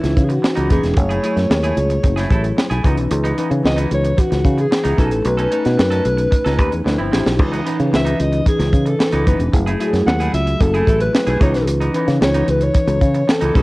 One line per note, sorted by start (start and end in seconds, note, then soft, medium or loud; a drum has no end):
0.00 0.14 C#2 medium
0.00 0.69 E3 medium
0.00 0.70 C#4 medium
0.00 0.70 D#4 medium
0.00 0.26 E4 medium
0.00 0.70 B4 loud
0.00 muted clean electric guitar stroke soft
0.00 closed hi-hat medium
0.04 snare soft
0.17 0.37 C#3 medium
0.17 kick medium
0.17 closed hi-hat medium
0.24 0.33 G#4 medium
0.29 0.71 F#4 medium
0.29 muted clean electric guitar stroke medium
0.29 closed hi-hat soft
0.42 muted clean electric guitar stroke soft
0.42 snare medium
0.55 0.67 C#2 medium
0.55 0.68 E3 medium
0.55 0.69 B3 medium
0.55 0.69 D#4 medium
0.55 closed hi-hat medium
0.69 0.81 F#1 medium
0.69 0.84 E3 medium
0.69 0.90 E3 medium
0.69 0.83 B3 medium
0.69 0.91 C#4 medium
0.69 0.91 D#4 medium
0.69 0.81 D#4 medium
0.69 0.99 G#4 medium
0.69 0.91 B4 medium
0.69 kick medium
0.69 closed hi-hat medium
0.82 0.94 E1 medium
0.82 muted clean electric guitar stroke soft
0.82 snare soft
0.82 closed hi-hat soft
0.96 1.17 F#1 medium
0.96 1.17 F#3 medium
0.96 1.18 A3 medium
0.96 1.18 E4 medium
0.96 1.18 G#4 medium
0.96 2.85 C#5 medium
0.96 muted clean electric guitar stroke soft
0.96 kick loud
0.96 closed hi-hat loud
1.09 1.22 A3 medium
1.09 1.23 E4 soft
1.09 1.24 G#4 medium
1.09 closed hi-hat soft
1.23 2.05 F#3 medium
1.23 1.38 A3 medium
1.23 2.05 A3 medium
1.23 1.37 E4 medium
1.23 2.06 E4 medium
1.23 2.06 G#4 medium
1.23 1.35 G#4 medium
1.23 closed hi-hat medium
1.36 1.47 F#2 medium
1.36 muted clean electric guitar stroke medium
1.36 snare soft
1.36 closed hi-hat soft
1.50 1.71 D#2 medium
1.50 muted clean electric guitar stroke soft
1.50 snare loud
1.63 1.76 A3 medium
1.63 1.76 E4 medium
1.63 1.77 G#4 medium
1.63 closed hi-hat medium
1.77 1.97 C#2 medium
1.77 muted clean electric guitar stroke soft
1.77 closed hi-hat medium
1.90 muted clean electric guitar stroke soft
1.90 closed hi-hat soft
2.03 2.24 F#1 medium
2.03 muted clean electric guitar stroke soft
2.03 kick medium
2.03 closed hi-hat medium
2.16 2.28 A3 medium
2.16 2.29 E4 medium
2.16 2.31 G#4 medium
2.16 snare soft
2.16 closed hi-hat soft
2.30 2.51 A1 medium
2.30 2.45 A3 medium
2.30 2.44 E4 medium
2.30 2.43 A4 medium
2.30 kick medium
2.30 closed hi-hat medium
2.44 muted clean electric guitar stroke soft
2.44 closed hi-hat soft
2.57 muted clean electric guitar stroke soft
2.57 snare medium
2.70 2.81 B1 medium
2.70 2.84 A3 soft
2.70 2.85 E4 medium
2.70 2.85 G#4 medium
2.70 closed hi-hat medium
2.83 2.97 C#2 medium
2.83 3.03 E3 medium
2.83 3.27 E3 medium
2.83 2.97 B3 medium
2.83 3.27 C#4 medium
2.83 3.27 D#4 medium
2.83 2.96 D#4 medium
2.83 3.28 B4 medium
2.83 kick loud
2.83 closed hi-hat medium
2.97 3.08 B1 medium
2.97 muted clean electric guitar stroke soft
2.97 closed hi-hat soft
3.10 3.32 C#2 loud
3.10 muted clean electric guitar stroke soft
3.10 closed hi-hat loud
3.24 3.36 E3 medium
3.24 3.37 B3 medium
3.24 3.38 D#4 medium
3.24 closed hi-hat medium
3.37 3.52 E3 medium
3.37 4.19 E3 medium
3.37 3.50 B3 medium
3.37 4.20 C#4 medium
3.37 4.20 D#4 medium
3.37 3.49 D#4 medium
3.37 4.20 B4 loud
3.37 closed hi-hat medium
3.50 3.61 C#3 medium
3.50 muted clean electric guitar stroke medium
3.50 closed hi-hat soft
3.64 3.85 C#2 medium
3.64 3.78 D#5 medium
3.64 muted clean electric guitar stroke soft
3.64 snare loud
3.76 3.90 E3 medium
3.76 3.90 B3 medium
3.76 3.91 D#4 medium
3.76 closed hi-hat medium
3.91 4.12 C#2 medium
3.91 4.21 C#5 loud
3.91 muted clean electric guitar stroke medium
3.91 closed hi-hat medium
4.04 muted clean electric guitar stroke soft
4.04 closed hi-hat soft
4.17 4.62 F#4 medium
4.17 muted clean electric guitar stroke medium
4.17 kick medium
4.17 closed hi-hat loud
4.31 4.42 C#2 medium
4.31 muted clean electric guitar stroke soft
4.31 snare soft
4.31 closed hi-hat soft
4.45 4.65 C#3 loud
4.45 kick medium
4.45 closed hi-hat medium
4.58 4.99 G#4 loud
4.58 muted clean electric guitar stroke soft
4.58 closed hi-hat soft
4.71 muted clean electric guitar stroke soft
4.71 snare medium
4.84 4.95 C#2 medium
4.84 5.04 E3 medium
4.84 4.97 B3 medium
4.84 4.98 D#4 medium
4.84 closed hi-hat medium
4.97 5.12 B1 medium
4.97 5.41 A3 medium
4.97 5.13 C#4 medium
4.97 5.41 C#4 medium
4.97 5.41 D#4 medium
4.97 5.11 D#4 medium
4.97 5.10 A4 medium
4.97 5.27 A4 medium
4.97 5.41 B4 medium
4.97 kick medium
4.97 closed hi-hat medium
5.11 5.22 A1 medium
5.11 muted clean electric guitar stroke soft
5.11 closed hi-hat soft
5.25 5.46 B1 medium
5.25 7.13 B4 loud
5.25 muted clean electric guitar stroke soft
5.25 closed hi-hat medium
5.37 5.49 C#4 medium
5.37 5.51 D#4 medium
5.37 5.51 A4 medium
5.37 closed hi-hat medium
5.51 6.33 A3 medium
5.51 5.66 C#4 medium
5.51 6.34 C#4 medium
5.51 5.65 D#4 medium
5.51 6.34 D#4 medium
5.51 5.64 A4 medium
5.51 6.34 B4 medium
5.51 closed hi-hat medium
5.65 5.76 B2 medium
5.65 muted clean electric guitar stroke soft
5.65 snare soft
5.65 closed hi-hat soft
5.78 5.99 F#2 medium
5.78 muted clean electric guitar stroke soft
5.78 snare loud
5.90 6.03 C#4 medium
5.90 6.04 D#4 medium
5.90 6.04 A4 medium
5.90 closed hi-hat medium
6.04 6.26 B1 medium
6.04 muted clean electric guitar stroke soft
6.04 closed hi-hat medium
6.17 muted clean electric guitar stroke soft
6.17 closed hi-hat soft
6.31 muted clean electric guitar stroke soft
6.31 kick medium
6.31 closed hi-hat medium
6.45 6.59 C#2 medium
6.45 6.56 C#4 medium
6.45 6.57 D#4 medium
6.45 6.59 A4 medium
6.45 snare soft
6.45 closed hi-hat soft
6.57 6.69 D#2 medium
6.57 6.73 C#4 medium
6.57 6.71 D#4 medium
6.57 6.71 B4 medium
6.57 kick medium
6.57 closed hi-hat medium
6.71 6.83 E2 medium
6.71 muted clean electric guitar stroke soft
6.71 closed hi-hat soft
6.84 6.96 D2 medium
6.84 7.07 F3 medium
6.84 7.07 D4 medium
6.84 7.07 E4 medium
6.84 7.08 C5 medium
6.84 muted clean electric guitar stroke soft
6.84 snare soft
6.98 7.09 G1 medium
6.98 7.10 F3 medium
6.98 7.11 C4 medium
6.98 7.12 E4 medium
7.11 7.23 A1 medium
7.11 7.31 F3 medium
7.11 7.33 F3 medium
7.11 7.25 C4 medium
7.11 7.33 D4 medium
7.11 7.24 E4 medium
7.11 7.33 E4 medium
7.11 7.33 G4 medium
7.11 snare medium
7.25 7.39 B1 medium
7.25 muted clean electric guitar stroke soft
7.25 snare medium
7.38 7.60 C#2 medium
7.38 7.60 E3 medium
7.38 7.60 C#4 medium
7.38 7.60 D#4 medium
7.38 7.60 B4 medium
7.38 muted clean electric guitar stroke soft
7.38 kick loud
7.38 crash medium
7.52 7.63 E3 soft
7.52 7.65 B3 medium
7.52 7.66 D#4 medium
7.52 closed hi-hat soft
7.64 7.80 E3 medium
7.64 8.48 E3 medium
7.64 7.78 B3 medium
7.64 8.48 C#4 medium
7.64 7.77 D#4 medium
7.64 8.48 D#4 medium
7.64 8.48 B4 loud
7.64 closed hi-hat medium
7.78 7.90 C#3 medium
7.78 muted clean electric guitar stroke soft
7.78 closed hi-hat soft
7.92 8.13 C#2 medium
7.92 8.23 E5 loud
7.92 muted clean electric guitar stroke soft
7.92 snare medium
8.05 8.17 E3 medium
8.05 8.18 B3 medium
8.05 8.19 D#4 medium
8.05 closed hi-hat medium
8.19 8.40 C#2 medium
8.19 8.47 D#5 medium
8.19 muted clean electric guitar stroke soft
8.19 closed hi-hat medium
8.32 muted clean electric guitar stroke soft
8.32 closed hi-hat soft
8.46 8.89 G#4 medium
8.46 muted clean electric guitar stroke soft
8.46 kick medium
8.46 closed hi-hat medium
8.59 8.70 C#2 loud
8.59 muted clean electric guitar stroke soft
8.59 snare soft
8.59 closed hi-hat soft
8.73 8.94 C#3 medium
8.73 kick medium
8.73 closed hi-hat medium
8.86 9.28 A4 medium
8.86 muted clean electric guitar stroke soft
8.86 closed hi-hat soft
8.99 muted clean electric guitar stroke soft
8.99 snare medium
9.12 9.23 C#2 medium
9.12 9.25 E3 medium
9.12 9.26 B3 medium
9.12 9.26 D#4 medium
9.12 closed hi-hat medium
9.26 9.37 F#1 medium
9.26 9.41 E3 medium
9.26 9.47 E3 medium
9.26 9.40 B3 medium
9.26 9.47 C#4 medium
9.26 9.47 D#4 medium
9.26 9.38 D#4 medium
9.26 9.53 B4 medium
9.26 9.47 B4 medium
9.26 kick medium
9.26 closed hi-hat medium
9.39 9.50 E1 medium
9.39 muted clean electric guitar stroke soft
9.39 closed hi-hat soft
9.52 9.74 F#1 medium
9.52 9.73 F#3 medium
9.52 9.74 A3 medium
9.52 9.74 E4 medium
9.52 9.74 G#4 medium
9.52 muted clean electric guitar stroke soft
9.52 kick loud
9.52 closed hi-hat medium
9.66 9.79 A3 medium
9.66 9.80 E4 medium
9.66 9.80 G#4 medium
9.66 closed hi-hat medium
9.80 10.62 F#3 medium
9.80 9.95 A3 medium
9.80 10.62 A3 medium
9.80 10.62 E4 medium
9.80 9.93 E4 medium
9.80 9.87 F#4 medium
9.80 9.92 G#4 medium
9.80 closed hi-hat medium
9.87 10.66 G#4 loud
9.93 10.04 F#2 medium
9.93 muted clean electric guitar stroke medium
9.93 snare soft
9.93 closed hi-hat soft
10.06 10.27 D#2 medium
10.06 10.32 F#5 loud
10.06 muted clean electric guitar stroke soft
10.06 snare loud
10.20 10.32 A3 medium
10.20 10.33 E4 medium
10.20 10.34 G#4 medium
10.20 closed hi-hat medium
10.33 10.54 C#2 medium
10.33 10.63 E5 loud
10.33 muted clean electric guitar stroke soft
10.33 closed hi-hat medium
10.47 muted clean electric guitar stroke soft
10.47 closed hi-hat soft
10.60 10.81 F#1 medium
10.60 11.01 A4 loud
10.60 muted clean electric guitar stroke soft
10.60 kick medium
10.60 closed hi-hat medium
10.74 10.86 A3 medium
10.74 10.87 E4 medium
10.74 10.88 G#4 medium
10.74 closed hi-hat soft
10.87 11.08 A1 medium
10.87 11.02 A3 medium
10.87 11.00 E4 medium
10.87 11.00 A4 medium
10.87 kick medium
10.87 closed hi-hat medium
11.00 11.38 B4 medium
11.00 muted clean electric guitar stroke medium
11.00 closed hi-hat soft
11.13 muted clean electric guitar stroke soft
11.13 snare loud
11.27 11.37 B1 medium
11.27 11.41 A3 medium
11.27 11.41 E4 medium
11.27 11.42 G#4 medium
11.27 closed hi-hat medium
11.40 11.54 C#2 medium
11.40 11.59 E3 medium
11.40 11.83 E3 medium
11.40 11.54 B3 medium
11.40 11.84 C#4 medium
11.40 11.84 D#4 medium
11.40 11.53 D#4 medium
11.40 11.84 B4 medium
11.40 11.67 C#5 medium
11.40 kick loud
11.40 closed hi-hat medium
11.54 11.67 B1 medium
11.54 muted clean electric guitar stroke soft
11.54 snare soft
11.54 closed hi-hat soft
11.67 11.88 C#2 loud
11.67 muted clean electric guitar stroke soft
11.67 closed hi-hat loud
11.80 11.93 E3 medium
11.80 11.94 B3 medium
11.80 11.95 D#4 medium
11.80 closed hi-hat medium
11.93 12.76 E3 medium
11.93 12.09 E3 medium
11.93 12.08 B3 medium
11.93 12.76 C#4 medium
11.93 12.76 D#4 medium
11.93 12.06 D#4 medium
11.93 12.76 B4 medium
11.93 closed hi-hat medium
12.08 12.18 C#3 medium
12.08 muted clean electric guitar stroke soft
12.08 snare soft
12.08 closed hi-hat soft
12.21 12.42 C#2 medium
12.21 12.52 C#5 loud
12.21 muted clean electric guitar stroke soft
12.21 snare loud
12.34 12.46 E3 medium
12.34 12.47 B3 medium
12.34 12.48 D#4 medium
12.34 closed hi-hat medium
12.47 12.69 C#2 medium
12.47 12.65 B4 loud
12.47 muted clean electric guitar stroke soft
12.47 closed hi-hat medium
12.61 13.32 C#5 loud
12.61 muted clean electric guitar stroke soft
12.61 closed hi-hat soft
12.74 muted clean electric guitar stroke soft
12.74 kick loud
12.74 closed hi-hat medium
12.87 12.98 C#2 loud
12.87 muted clean electric guitar stroke soft
12.87 closed hi-hat medium
13.01 13.22 C#3 loud
13.01 kick medium
13.01 closed hi-hat medium
13.14 muted clean electric guitar stroke medium
13.14 closed hi-hat soft
13.28 13.57 A4 medium
13.28 muted clean electric guitar stroke soft
13.28 snare loud
13.41 13.52 C#2 medium
13.41 13.61 E3 medium
13.41 13.54 B3 medium
13.41 13.54 D#4 medium
13.41 closed hi-hat medium
13.54 13.63 B1 medium
13.54 13.63 A3 medium
13.54 13.63 C#4 medium
13.54 13.63 D#4 medium
13.54 13.63 G#4 medium
13.54 13.63 A4 medium
13.54 13.63 B4 medium
13.54 kick loud
13.54 closed hi-hat medium